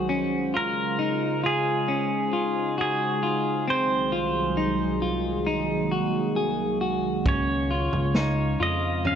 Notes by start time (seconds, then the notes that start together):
Already playing: G#3 C5
0.09 C#3 C#4 F4
0.54 F4 A#4
0.99 D#4
1.44 F4 G#4
1.88 C#4 D#4
2.33 F4
2.78 F#4 G#4
3.23 F4
3.67 C2 D#3 F#3 C4 G#4 C5
4.12 F4
4.57 D#4
5.02 F4
5.47 A#3 D#4
5.92 F#4
6.36 G#4
6.81 F#4
7.26 C#2 C#3 C#4 C#5 F5, kick, floor tom
7.71 F4
7.93 C#2, floor tom
8.15 D#4, snare
8.60 F2 F4 D#5
9.05 C#4 F5, floor tom